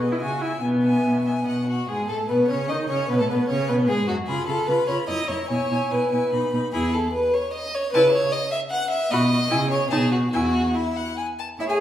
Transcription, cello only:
Already playing: B2
0.22 C#3
0.63 B2
1.06 B2
1.48 B2
1.89 G#2
2.10 A2
2.29 B2
2.50 C#3
2.69 D#3
2.90 C#3
3.10 B2
3.20 A2
3.30 B2
3.50 C#3
3.69 B2
3.89 G#2
4.09 F#2
4.28 C#3
4.48 C#3
4.68 C#3
4.89 C#3
5.09 F#2
5.29 F#2
5.50 B2
5.71 B2
5.92 B2
6.13 B2
6.33 B2
6.53 B2
6.74 E2
7.94 C#3
9.12 B2
9.51 C#3
9.92 B2
10.33 E2
11.59 E4
11.69 G#4

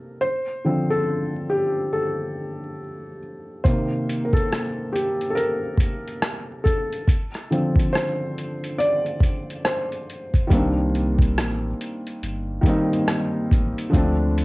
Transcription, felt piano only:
Already playing: G4 A#4
0.21 C5
0.65 D3 F3 C4
0.90 A4
1.50 G4
1.93 A4
3.64 C3 D#3 A#3 C5
4.24 A#4
4.33 A4
4.92 G4
5.30 A4
5.35 A#4
6.64 A4
7.51 D3 F3 C4
7.93 C5
8.78 D5
9.64 C5
10.47 D#3 G3 A#3
10.53 C4 D4
12.61 D#3 G3 A#3
12.67 C4 D#4
13.90 D3 F3 A3
13.96 C4 D4

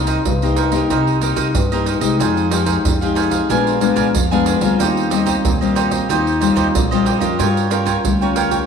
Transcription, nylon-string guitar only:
Already playing: C3 A#3 D#4 G4
0.26 G2
0.42 A#3 D#4 G4
0.72 A#3 D#4 G4
0.91 C3
1.22 A#3 D#4 G4
1.56 G2
1.72 A#3 D#4 G4
2.01 G#3 D#4 G4
2.20 F3
2.52 G#3 D#4 G4
2.85 C3
3.02 G#3 D#4 G4
3.50 A#2 G#3 B3 D4
3.81 G#3 B3 D4
4.15 F3
4.31 G#3 B3 D4
4.61 G3 C4 F4
4.80 D#3
5.11 G3 C4 F4
5.44 A#2
5.61 G3 C4 F4
6.10 D#3
6.41 G3 C4 F4
6.75 A#2
6.92 G3 C4 F4
7.21 C#4 F4 A#4
7.40 G3
7.71 C#4 F4 A#4
8.05 G3
8.22 C#4 F4 A#4

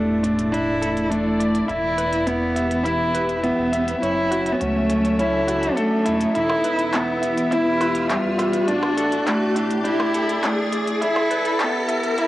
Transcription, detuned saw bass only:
Already playing: E1
1.69 E1
3.58 E1
4.02 F#1
4.61 C#2
5.19 C#2
6.07 E1
6.36 E1
8.25 E1
8.69 A1
9.27 E1
11.02 E1

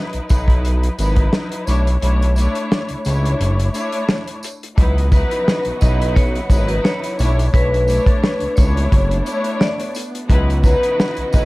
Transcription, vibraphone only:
5.13 B4
5.82 D#5
6.15 C#5
6.68 B4
6.84 C#5
7.54 B4
8.07 A4
8.23 B4
8.56 C#5
9.60 D5
10.63 B4
11.34 D#5

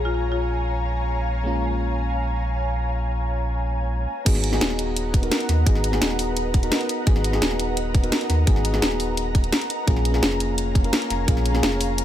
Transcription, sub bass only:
Already playing: A#1
4.26 G#1
4.61 D#1
5.49 D#2
5.67 G#1
6.02 D#1
7.07 G#1
7.42 D#1
8.30 D#2
8.47 G#1
8.82 D#1
9.88 A#1
10.23 F1
11.10 F1
11.28 A#1
11.63 F1

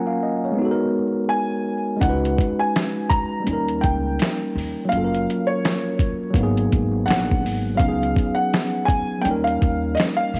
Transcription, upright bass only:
2.02 C#2
3.47 D#2
3.84 C#2
4.55 D#2
4.92 F#1
6.35 G#1
6.73 G#1
7.08 A#1
7.45 G#1
7.80 C#2
9.25 D#2
9.63 D#2
10.34 A#1

